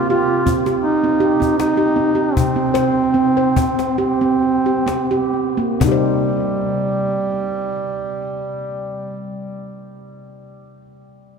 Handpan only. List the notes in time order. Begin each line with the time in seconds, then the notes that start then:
Already playing: C3 C4
0.10 G4
0.46 C4
0.66 G4
1.04 C4
1.20 G4
1.40 C4
1.77 G4
1.96 C4
2.15 G4
2.37 C3
2.56 C4
2.74 C5
3.14 C4
3.37 C5
3.56 C4
3.98 G4
4.21 C4
4.66 G4
4.86 C4
5.11 G4
5.57 A#3
5.80 C3 C4
5.84 D#4 G4
5.92 C5